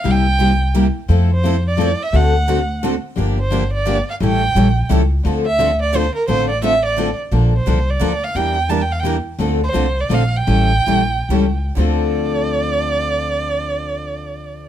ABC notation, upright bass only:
X:1
M:3/4
L:1/8
Q:"Swing" 1/4=173
K:Dm
V:1 name="Upright bass" clef=bass
C,,6 | F,,6 | D,,6 | G,,,6 |
A,,,2 B,,,2 ^C,,2 | D,,6 | A,,,6 | B,,,2 C,,2 D,,2 |
E,,6 | D,,2 C,,2 B,,,2 | A,,,2 B,,,2 ^C,,2 | D,,6- |
D,,6 |]